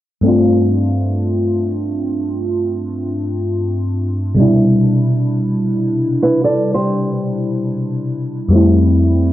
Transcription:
0.21 4.32 G2 medium
0.21 4.33 A3 medium
0.21 4.34 C4 medium
0.26 4.35 D4 medium
0.26 4.36 F4 medium
4.35 8.48 B2 medium
4.35 8.46 C3 medium
4.35 8.47 G3 medium
4.40 8.48 D4 medium
4.40 8.49 E4 medium
6.22 6.43 E4 medium
6.22 6.43 B4 medium
6.44 6.73 A4 medium
6.44 6.73 D5 medium
6.74 8.26 G4 medium
6.74 8.26 C5 medium
8.48 9.33 F2 medium
8.48 9.33 G3 medium
8.48 9.33 A3 medium
8.54 9.33 C4 medium
8.54 9.33 E4 medium

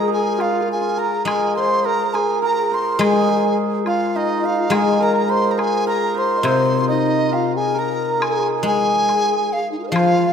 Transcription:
0.00 1.24 G#3 medium
0.00 0.38 F4 medium
0.00 0.40 G#4 medium
0.00 0.97 A#4 medium
0.00 1.57 C5 medium
0.00 0.10 A#5 medium
0.08 1.26 G#4 medium
0.13 0.43 G#5 medium
0.38 0.44 F4 medium
0.38 0.64 F4 medium
0.38 0.69 F5 medium
0.38 high woodblock soft
0.38 low woodblock soft
0.44 0.52 F4 soft
0.52 0.60 F4 soft
0.61 0.67 F4 soft
0.61 0.71 A#4 soft
0.68 0.74 F4 medium
0.68 1.28 G#4 medium
0.72 0.81 F4 soft
0.72 1.00 G#5 medium
0.81 3.87 F4 medium
0.97 1.85 A#4 medium
0.97 1.26 A#5 medium
1.25 2.98 G#3 medium
1.25 2.14 G#4 medium
1.25 1.54 G#5 medium
1.25 high woodblock medium
1.30 1.59 G#4 medium
1.56 2.71 C5 medium
1.56 1.87 C5 medium
1.56 1.86 C6 medium
1.85 2.42 A#4 medium
1.85 2.07 A#4 medium
1.85 2.15 A#5 medium
2.08 2.17 A#4 soft
2.14 2.98 G#4 medium
2.14 2.75 G#4 medium
2.14 2.42 G#5 medium
2.14 high woodblock soft
2.42 5.00 A#4 medium
2.42 2.76 A#5 medium
2.72 5.28 C5 medium
2.72 3.02 C6 medium
2.99 4.69 G#3 medium
2.99 3.06 G#4 medium
2.99 3.56 G#4 medium
2.99 3.57 G#5 medium
2.99 high woodblock medium
3.06 3.13 G#4 medium
3.13 3.20 G#4 medium
3.21 3.28 G#4 soft
3.28 3.36 G#4 medium
3.37 3.44 G#4 medium
3.45 4.71 G#4 medium
3.78 3.87 G#4 soft
3.86 4.73 F4 medium
3.86 4.43 F4 medium
3.86 4.18 F5 medium
3.86 high woodblock soft
4.16 6.87 D#4 medium
4.16 4.47 D#5 medium
4.43 6.81 F4 medium
4.43 4.76 F5 medium
4.70 7.32 G#3 medium
4.70 5.00 G#4 medium
4.70 5.57 G#4 medium
4.70 high woodblock medium
4.74 5.04 G#5 medium
5.00 5.86 A#4 medium
5.00 5.27 A#4 medium
5.00 5.32 A#5 medium
5.28 6.14 C5 medium
5.28 5.61 C5 medium
5.28 5.53 C6 medium
5.51 5.61 A#5 medium
5.58 8.19 G#4 medium
5.58 6.16 G#4 medium
5.58 5.88 G#5 medium
5.58 high woodblock soft
5.87 7.74 A#4 medium
5.87 6.20 A#5 medium
6.14 6.44 C5 medium
6.14 6.43 C5 medium
6.14 6.45 C6 medium
6.37 8.76 D#5 soft
6.43 9.07 C3 medium
6.43 9.08 C5 medium
6.43 6.85 C5 medium
6.43 6.86 C6 medium
6.43 high woodblock medium
6.81 7.31 F4 soft
6.88 10.33 D#4 medium
6.88 7.30 D#4 medium
6.88 7.36 D#5 medium
7.32 9.95 F4 medium
7.32 7.58 F4 medium
7.32 7.55 F5 medium
7.32 low woodblock soft
7.56 7.80 G#4 medium
7.56 7.80 G#5 medium
7.74 10.33 A#4 medium
7.79 8.24 A#4 medium
7.79 8.25 A#5 medium
8.20 8.64 G#4 medium
8.20 8.47 G#5 medium
8.20 high woodblock medium
8.63 10.33 G#3 medium
8.63 10.33 G#4 medium
8.63 9.61 G#4 medium
8.67 9.54 G#5 medium
9.09 high woodblock soft
9.53 9.71 F5 medium
9.72 9.79 D#4 soft
9.79 9.82 F4 soft
9.84 9.97 G#4 medium
9.84 9.87 A#4 soft
9.84 9.90 C5 medium
9.91 10.33 F3 medium
9.91 9.94 D#5 medium
9.91 10.33 F5 medium
9.95 10.33 F4 medium
9.95 10.32 F4 medium
9.95 high woodblock medium

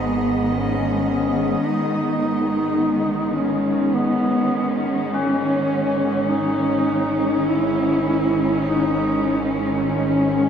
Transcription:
0.00 1.63 G#1 medium
0.00 1.62 G#2 medium
0.00 10.49 D#3 medium
0.00 10.49 G#3 medium
0.00 5.43 B3 medium
0.00 0.14 F#4 medium
0.00 1.64 D#5 medium
0.47 1.66 C#4 medium
1.63 10.49 G#1 medium
1.63 10.49 G#2 medium
1.63 3.37 D#4 medium
3.36 3.96 C#4 medium
3.82 10.49 C#4 medium
3.94 4.87 B3 medium
5.11 6.32 C#4 loud
5.11 10.49 C#4 medium
6.30 7.48 D#4 medium
7.47 8.65 E4 loud
8.66 9.54 D#4 loud
9.87 10.49 C#4 medium

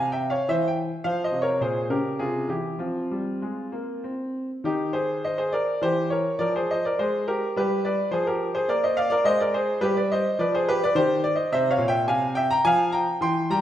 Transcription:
0.00 0.33 C3 medium
0.12 0.29 E5 medium
0.12 0.30 G5 medium
0.30 0.48 C#5 medium
0.30 0.49 F5 medium
0.49 0.89 E3 medium
0.49 0.67 C5 medium
0.49 0.67 E5 medium
0.68 0.77 G5 medium
1.04 1.32 F3 medium
1.04 1.23 C5 medium
1.04 1.23 F5 medium
1.24 1.43 C5 medium
1.24 1.40 D#5 medium
1.32 1.60 C3 soft
1.42 1.61 A#4 medium
1.42 1.59 C#5 medium
1.61 1.89 A#2 soft
1.61 1.89 G#4 soft
1.61 1.87 C5 medium
1.90 2.19 C#3 soft
1.90 2.19 G4 medium
1.90 2.20 A#4 medium
2.19 2.48 C3 soft
2.19 2.48 F4 medium
2.19 2.50 G#4 medium
2.48 2.78 E3 soft
2.48 2.79 E4 soft
2.48 2.76 G4 medium
2.78 3.09 F3 soft
2.78 4.02 C4 soft
2.78 4.10 F4 medium
3.11 3.40 G3 soft
3.42 3.71 G#3 soft
3.72 4.02 A#3 soft
4.04 4.48 C4 soft
4.64 5.48 D#3 medium
4.64 4.93 D#4 soft
4.64 4.94 G4 medium
4.93 5.21 G#4 medium
4.93 5.23 C5 medium
5.24 5.36 C5 medium
5.24 5.38 D#5 medium
5.38 5.52 G#4 medium
5.38 5.52 C5 medium
5.53 5.80 A#4 medium
5.53 5.82 D5 medium
5.82 6.23 E3 medium
5.82 6.10 G4 medium
5.82 6.07 C5 medium
6.10 6.38 A#4 medium
6.10 6.39 C#5 medium
6.39 6.81 F3 medium
6.39 6.54 A#4 medium
6.39 6.54 D5 medium
6.56 6.69 G#4 medium
6.56 6.70 C5 medium
6.71 6.84 C5 medium
6.71 6.84 D#5 medium
6.85 6.99 A#4 soft
6.85 6.99 D5 medium
6.99 7.40 G#3 medium
6.99 7.26 G#4 medium
6.99 7.28 C5 medium
7.28 7.54 G4 medium
7.28 7.52 A#4 medium
7.56 7.97 G3 medium
7.56 7.83 G4 medium
7.56 7.84 B4 medium
7.85 8.11 B4 medium
7.85 8.08 D5 medium
8.11 8.52 F3 medium
8.11 8.26 G#4 medium
8.11 8.26 C5 medium
8.27 8.54 G4 medium
8.27 8.51 A#4 medium
8.55 8.68 G#4 medium
8.55 8.69 C5 medium
8.68 9.09 A#3 medium
8.68 8.82 A#4 medium
8.68 8.83 D5 medium
8.84 8.97 C5 medium
8.84 8.97 D#5 medium
8.97 9.09 D5 medium
8.97 9.11 F5 medium
9.10 9.25 A#4 medium
9.10 9.25 D5 medium
9.24 9.66 G#3 medium
9.24 9.39 C5 medium
9.24 9.40 D#5 loud
9.40 9.54 A#4 medium
9.40 9.54 D5 medium
9.54 9.80 G#4 medium
9.54 9.82 C5 medium
9.81 10.22 G3 medium
9.81 9.96 G4 medium
9.81 9.96 B4 medium
9.97 10.10 B4 medium
9.97 10.11 D5 medium
10.12 10.38 C5 medium
10.12 10.39 D#5 medium
10.39 10.80 F3 medium
10.39 10.53 B4 medium
10.39 10.53 D5 medium
10.55 10.67 G#4 medium
10.55 10.68 C5 medium
10.69 10.81 G4 medium
10.69 10.82 B4 medium
10.84 10.97 B4 medium
10.84 10.97 D5 loud
10.95 11.35 D#3 medium
10.95 11.23 G4 medium
10.95 11.20 C5 loud
11.24 11.33 D5 medium
11.35 11.52 C5 medium
11.35 11.53 D#5 medium
11.52 11.78 C3 medium
11.52 11.70 C5 medium
11.52 11.67 E5 loud
11.71 11.87 C#5 medium
11.71 11.88 F5 medium
11.78 12.05 A#2 medium
11.88 12.06 E5 medium
11.88 12.04 G5 loud
12.07 12.48 C3 medium
12.07 12.34 F5 medium
12.07 12.31 G#5 medium
12.35 12.49 E5 medium
12.35 12.49 G5 loud
12.51 12.64 G5 medium
12.51 12.64 A#5 loud
12.65 13.04 F3 medium
12.65 12.91 F5 medium
12.65 12.92 G#5 loud
12.92 13.19 G5 medium
12.92 13.16 A#5 medium
13.21 13.47 E3 medium
13.21 13.47 G5 medium
13.21 13.49 C6 medium
13.50 13.61 G3 medium
13.50 13.61 G5 medium
13.50 13.61 A#5 loud

